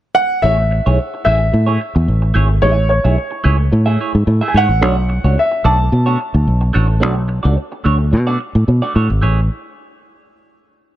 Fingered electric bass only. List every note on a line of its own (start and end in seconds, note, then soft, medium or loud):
0.44 0.79 A1 loud
0.87 0.97 B1 medium
1.26 1.50 A1 medium
1.54 1.77 A2 loud
1.96 2.07 E2 medium
2.08 2.32 A1 medium
2.35 2.59 G#1 medium
2.63 2.99 A1 loud
3.05 3.16 B1 medium
3.45 3.69 C#2 medium
3.72 3.96 A2 loud
4.15 4.26 G#2 medium
4.27 4.40 A2 medium
4.54 4.67 G#2 medium
4.69 4.82 A1 medium
4.82 5.18 B1 medium
5.24 5.36 C#2 medium
5.65 5.88 B1 medium
5.92 6.16 B2 medium
6.34 6.46 D2 medium
6.47 6.71 B1 medium
6.75 7.03 A1 medium
7.03 7.38 B1 loud
7.45 7.56 C#2 medium
7.86 8.14 D2 medium
8.13 8.36 B2 medium
8.55 8.66 A2 medium
8.68 8.80 B2 medium
8.96 9.08 A2 medium
9.10 9.21 G#1 medium
9.23 9.48 A1 loud